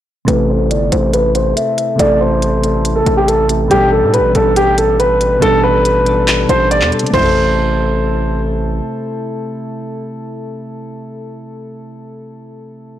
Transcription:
0.25 A1 C3 A3 E4 B4, closed hi-hat
0.30 A4
0.49 C5
0.57 C3 A3 E4
0.63 A4
0.71 G1 D5, closed hi-hat
0.90 A1 C3 A3 E4 C5, closed hi-hat
0.96 A4
1.00 C3 A3 E4
1.05 A4
1.14 B4, closed hi-hat
1.35 C5, closed hi-hat
1.56 E5, closed hi-hat
1.78 closed hi-hat
1.96 A1 C3 A3 E4 D5, closed hi-hat
2.01 A4
2.21 C5
2.29 C3 A3 E4
2.34 A4
2.42 closed hi-hat
2.60 C3 A3 E4, closed hi-hat
2.65 A4
2.85 closed hi-hat
2.96 A4
3.03 A1 C3 A3 E4, closed hi-hat
3.09 A4
3.17 G4
3.28 A4, closed hi-hat
3.48 C3 A3 E4, closed hi-hat
3.53 A4
3.68 A1 B2 G3 D4 G4, closed hi-hat
3.73 A4
3.92 A4
4.00 A2 B2 G3 D4
4.05 A4
4.14 B4, closed hi-hat
4.19 A1
4.33 A1 B2 G3 D4 A4, closed hi-hat
4.39 A4
4.43 B2 G3 D4
4.49 A4
4.56 G4, closed hi-hat
4.78 A4, closed hi-hat
4.99 B4, closed hi-hat
5.21 closed hi-hat
5.39 A1 B2 G3 D4 A4, closed hi-hat
5.45 A4
5.63 B4
5.73 B2 G3 D4
5.78 A4
5.85 closed hi-hat
6.04 B2 G3 D4, closed hi-hat
6.09 A4
6.28 clap, closed hi-hat
6.46 A1 B2 G3 D4 C5, closed hi-hat
6.51 A4
6.71 D5, closed hi-hat
6.81 E2, clap
6.89 B2 G3 D4, closed hi-hat
6.95 A4
6.99 C3, closed hi-hat
7.06 A3, closed hi-hat
7.14 A1 E4 C5, kick, floor tom, crash
7.24 A4

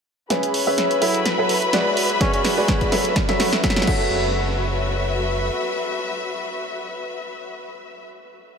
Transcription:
0.30 C#2 C#4 F#4 G#4 B4 C#5 E5 B5, snare, closed hi-hat
0.43 closed hi-hat
0.54 open hi-hat
0.63 G#1 C#4 G#4 B4 C#5 E5
0.78 snare, closed hi-hat
0.91 closed hi-hat
1.02 F#1 F#3 E4 F#4 A4 C#5 E5, open hi-hat
1.15 closed hi-hat
1.26 snare, closed hi-hat
1.38 F#1 F#3 F#4 A4 C#5 E5
1.49 open hi-hat
1.62 closed hi-hat
1.73 G#1 G#3 F#4 G#4 B4 D5, snare, closed hi-hat
1.97 open hi-hat
2.10 closed hi-hat
2.21 G#3 C#4 F#4 G#4 B4 D5, kick, snare, closed hi-hat
2.34 C#4, closed hi-hat
2.45 snare, open hi-hat
2.57 D1 G#3 F#4 G#4 B4 D5
2.68 kick, snare, closed hi-hat
2.81 kick, closed hi-hat
2.92 F#3 F#4 A4 C#5 E5, snare, open hi-hat
3.05 closed hi-hat
3.16 kick, snare, closed hi-hat
3.29 F#3 F#4 A4 C#5 E5, snare
3.40 snare, open hi-hat
3.53 snare, closed hi-hat
3.64 F#3 F#4 A4 C#5 E5, kick, snare, closed hi-hat
3.70 snare
3.76 snare
3.82 snare
3.87 F#4 A4 C#5 E5, kick, crash
3.95 B4
4.26 E5

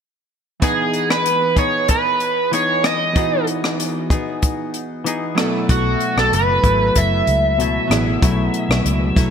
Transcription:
0.60 E3 B3 D#4 G#4, kick, closed hi-hat
0.64 G#4
0.94 closed hi-hat
1.10 B4, cross-stick
1.26 closed hi-hat
1.56 B3 D#4 G#4 C#5, kick, closed hi-hat
1.88 B4, kick, closed hi-hat
2.20 closed hi-hat
2.52 E3 B3 D#4 G#4 C#5, closed hi-hat
2.84 D#5, cross-stick, closed hi-hat
3.13 E3 B3 D#4, kick, closed hi-hat
3.18 F#4 G#4
3.47 closed hi-hat
3.64 cross-stick
3.80 closed hi-hat
4.10 B3 D#4 G#4, kick, closed hi-hat
4.42 kick, closed hi-hat
4.74 closed hi-hat
5.04 E3 B3 D#4 G#4, closed hi-hat
5.35 F#3 A3 B3 E4, cross-stick, closed hi-hat
5.39 B2 F#3 A4
5.69 B1 F#4, kick, closed hi-hat
6.00 closed hi-hat
6.17 B1 A4, cross-stick
6.32 F#1 B4, closed hi-hat
6.63 G#1 F#3 A3 E4, kick, closed hi-hat
6.95 F#1 E5, kick, closed hi-hat
7.27 C#2, closed hi-hat
7.58 B2 F#3 A3 E4, closed hi-hat
7.87 A1 F#3 B3 E4, cross-stick, closed hi-hat
7.92 G#4
8.22 B1 B2 F#3 A3 E4, kick, closed hi-hat
8.54 closed hi-hat
8.69 B1, cross-stick
8.85 C#2, closed hi-hat
9.16 B1 F#3 A3 E4, kick, closed hi-hat

